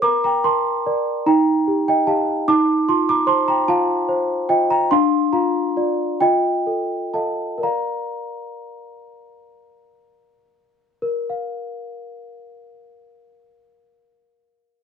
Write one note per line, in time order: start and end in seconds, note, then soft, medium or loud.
0.02 0.43 A#4 medium
0.02 0.23 A#5 medium
0.02 0.23 D6 loud
0.24 0.44 G5 medium
0.24 0.45 A#5 medium
0.44 0.85 A#4 medium
0.44 1.23 A5 medium
0.44 1.26 C6 medium
0.86 1.23 A#4 soft
0.86 1.23 D5 medium
1.26 2.44 D#4 medium
1.26 1.84 G5 medium
1.26 1.87 A#5 medium
1.68 2.06 G4 medium
1.88 2.06 D#5 medium
1.88 2.08 G5 medium
2.07 2.44 G4 medium
2.07 2.44 D#5 soft
2.07 2.46 F5 medium
2.07 2.48 A5 medium
2.48 4.88 D#4 medium
2.48 2.86 A5 medium
2.48 2.88 D6 loud
2.88 3.53 F4 soft
2.88 3.08 A5 medium
2.88 3.09 C6 medium
3.09 3.28 A#5 medium
3.09 3.29 D6 medium
3.27 3.92 C5 medium
3.27 3.47 A5 medium
3.27 3.48 C6 loud
3.48 3.68 G5 medium
3.48 3.69 A#5 medium
3.68 4.34 F4 medium
3.68 4.47 F5 medium
3.68 4.50 A5 loud
4.09 4.75 C5 medium
4.49 4.91 F4 medium
4.49 4.69 D#5 medium
4.49 4.70 G5 medium
4.70 4.91 G5 medium
4.70 4.92 A#5 medium
4.91 6.17 D4 medium
4.91 5.31 F5 medium
4.91 5.33 C6 loud
5.33 5.75 F4 medium
5.33 6.17 F5 medium
5.33 6.20 A#5 medium
5.77 6.17 F4 soft
5.77 6.17 D5 medium
6.21 7.59 F4 medium
6.21 7.10 D#5 medium
6.21 7.14 G5 medium
6.67 7.13 A4 soft
7.14 7.59 A4 soft
7.14 7.59 D#5 soft
7.14 7.60 F5 soft
7.14 7.63 A5 medium
7.58 7.60 A#4 soft
7.58 10.97 A#4 soft
7.58 10.98 D5 soft
7.63 10.35 F5 medium
7.63 10.39 A#5 medium
11.02 14.83 A#4 medium
11.30 14.83 F5 soft